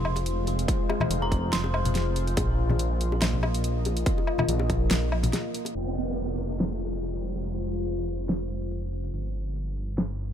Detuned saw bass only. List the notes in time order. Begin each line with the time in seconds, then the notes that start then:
Already playing: F1
1.10 F1
1.53 F1
2.37 A#1
3.22 A#1
4.49 A#1
4.91 A#1
5.75 F1
9.14 G1